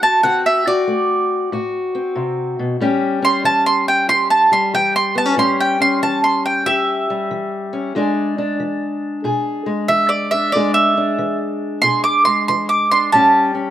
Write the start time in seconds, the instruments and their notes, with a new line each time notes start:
Already playing: steel-string acoustic guitar A3 C4
0.02 steel-string acoustic guitar F#4, mandolin A5
0.23 steel-string acoustic guitar D3 C4 F#4, mandolin F#5
0.46 mandolin E5
0.67 steel-string acoustic guitar F#4, mandolin D5
0.87 steel-string acoustic guitar A3
1.52 steel-string acoustic guitar A2 F#4
1.95 steel-string acoustic guitar C4
2.16 steel-string acoustic guitar C3
2.59 steel-string acoustic guitar B2
2.80 steel-string acoustic guitar A2 G3 C#4 G4
3.22 steel-string acoustic guitar C#4, mandolin C6
3.44 steel-string acoustic guitar E3, mandolin A5
3.66 mandolin C6
3.88 mandolin G5
4.09 steel-string acoustic guitar E2 G4, mandolin C6
4.30 mandolin A5
4.52 steel-string acoustic guitar G3, mandolin C6
4.74 steel-string acoustic guitar E3, mandolin G5
4.96 mandolin C6
5.15 steel-string acoustic guitar B3, mandolin A5
5.26 steel-string acoustic guitar C#4
5.36 steel-string acoustic guitar A2 G3 C#4 G4, mandolin C6
5.60 mandolin G5
5.80 steel-string acoustic guitar C#4, mandolin C6
6.02 steel-string acoustic guitar E3, mandolin A5
6.24 mandolin C6
6.46 mandolin G5
6.66 steel-string acoustic guitar E2 G4, mandolin E5
7.10 steel-string acoustic guitar G3
7.31 steel-string acoustic guitar E3
7.73 steel-string acoustic guitar C#4
7.95 steel-string acoustic guitar E2 G#3 D4 G#4
8.38 steel-string acoustic guitar D4
8.60 steel-string acoustic guitar E3
9.24 steel-string acoustic guitar B2 G#4
9.66 steel-string acoustic guitar G#3
9.88 steel-string acoustic guitar E3, mandolin E5
10.09 mandolin D5
10.31 steel-string acoustic guitar D4, mandolin E5
10.52 steel-string acoustic guitar E2 G#3 D4, mandolin D5
10.57 steel-string acoustic guitar G#4
10.74 mandolin E5
10.97 steel-string acoustic guitar D4
11.18 steel-string acoustic guitar E3
11.82 steel-string acoustic guitar B2 G#4, mandolin C6
12.04 mandolin D6
12.25 steel-string acoustic guitar G#3, mandolin C6
12.48 steel-string acoustic guitar E3, mandolin C6
12.69 mandolin D6
12.91 steel-string acoustic guitar D4, mandolin C6
13.12 steel-string acoustic guitar A2 G3 C#4 G4, mandolin A5
13.55 steel-string acoustic guitar C#4